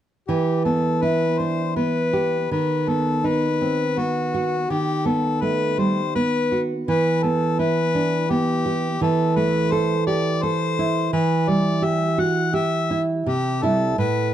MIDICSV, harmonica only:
0, 0, Header, 1, 2, 480
1, 0, Start_track
1, 0, Key_signature, 1, "minor"
1, 0, Tempo, 741656
1, 179, Time_signature, 3, 2, 24, 8
1, 2100, Tempo, 724638
1, 4020, Tempo, 710900
1, 8340, Tempo, 724638
1, 9531, End_track
2, 0, Start_track
2, 0, Title_t, "Harmonica"
2, 0, Program_c, 0, 22
2, 178, Note_on_c, 0, 67, 39
2, 402, Note_off_c, 0, 67, 0
2, 419, Note_on_c, 0, 69, 42
2, 658, Note_on_c, 0, 71, 48
2, 668, Note_off_c, 0, 69, 0
2, 900, Note_on_c, 0, 72, 47
2, 910, Note_off_c, 0, 71, 0
2, 1136, Note_off_c, 0, 72, 0
2, 1139, Note_on_c, 0, 71, 50
2, 1615, Note_off_c, 0, 71, 0
2, 1631, Note_on_c, 0, 71, 44
2, 1868, Note_on_c, 0, 69, 44
2, 1877, Note_off_c, 0, 71, 0
2, 2110, Note_on_c, 0, 71, 50
2, 2120, Note_off_c, 0, 69, 0
2, 2590, Note_on_c, 0, 66, 50
2, 2600, Note_off_c, 0, 71, 0
2, 3062, Note_on_c, 0, 67, 48
2, 3072, Note_off_c, 0, 66, 0
2, 3301, Note_on_c, 0, 69, 43
2, 3311, Note_off_c, 0, 67, 0
2, 3537, Note_on_c, 0, 71, 50
2, 3547, Note_off_c, 0, 69, 0
2, 3782, Note_on_c, 0, 72, 52
2, 3792, Note_off_c, 0, 71, 0
2, 4022, Note_off_c, 0, 72, 0
2, 4025, Note_on_c, 0, 71, 53
2, 4334, Note_off_c, 0, 71, 0
2, 4513, Note_on_c, 0, 71, 51
2, 4750, Note_on_c, 0, 69, 53
2, 4761, Note_off_c, 0, 71, 0
2, 4993, Note_on_c, 0, 71, 59
2, 5003, Note_off_c, 0, 69, 0
2, 5477, Note_on_c, 0, 67, 59
2, 5487, Note_off_c, 0, 71, 0
2, 5955, Note_off_c, 0, 67, 0
2, 5962, Note_on_c, 0, 69, 53
2, 6190, Note_on_c, 0, 71, 57
2, 6200, Note_off_c, 0, 69, 0
2, 6433, Note_on_c, 0, 72, 60
2, 6443, Note_off_c, 0, 71, 0
2, 6667, Note_off_c, 0, 72, 0
2, 6671, Note_on_c, 0, 74, 59
2, 6910, Note_on_c, 0, 72, 63
2, 6920, Note_off_c, 0, 74, 0
2, 7382, Note_off_c, 0, 72, 0
2, 7386, Note_on_c, 0, 71, 52
2, 7626, Note_on_c, 0, 74, 56
2, 7636, Note_off_c, 0, 71, 0
2, 7867, Note_on_c, 0, 76, 53
2, 7877, Note_off_c, 0, 74, 0
2, 8104, Note_on_c, 0, 78, 57
2, 8114, Note_off_c, 0, 76, 0
2, 8343, Note_on_c, 0, 76, 62
2, 8353, Note_off_c, 0, 78, 0
2, 8653, Note_off_c, 0, 76, 0
2, 8820, Note_on_c, 0, 67, 51
2, 9057, Note_on_c, 0, 69, 50
2, 9067, Note_off_c, 0, 67, 0
2, 9292, Note_off_c, 0, 69, 0
2, 9296, Note_on_c, 0, 71, 53
2, 9531, Note_off_c, 0, 71, 0
2, 9531, End_track
0, 0, End_of_file